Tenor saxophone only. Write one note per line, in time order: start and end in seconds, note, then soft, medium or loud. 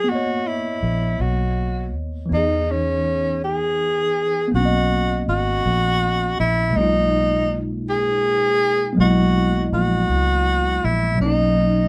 0.00 0.11 G#4 medium
0.09 0.48 F#4 medium
0.47 1.22 E4 medium
1.21 1.94 F#4 medium
2.34 2.72 D#4 medium
2.71 3.43 C#4 medium
3.44 4.50 G#4 medium
4.55 5.23 F#4 loud
5.29 6.35 F#4 loud
6.40 6.79 E4 medium
6.77 7.59 D#4 medium
7.89 8.94 G#4 loud
9.00 9.68 F#4 loud
9.74 10.86 F#4 loud
10.84 11.20 E4 medium
11.22 11.88 D#4 medium